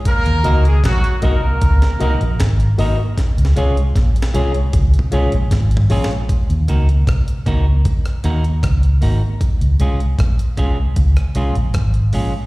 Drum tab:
HH |x--x--x--x--x--x--x-----x--x--x--x--x--x--o-----|x--x--x--x--x--x--x--x--x--x--x--x--x--x--o--x--|x--x--x--x--x--x--x-----x--x--x--x--x--x--o-----|x--x--x--x--x--x--x-----x--x--x--x--x--x--o-----|
SD |------------o--------------o--------o-----------|o---o-------o---o-------------------o-------o---|------------r--------------r--------r-----------|------------r--------------r--------r-----------|
T2 |------------------------------------------------|------------------------o---o-------------------|------------------------------------------------|------------------------------------------------|
FT |------------------------------------------------|----------------------------------------o-------|------------------------------------------------|------------------------------------------------|
BD |o-----------o-----o-----o-----------o-----------|o-----------o-----------o-----------o-----------|o-----------o-----o-----o-----------o-----------|o-----------o-----o-----o-----------o-----------|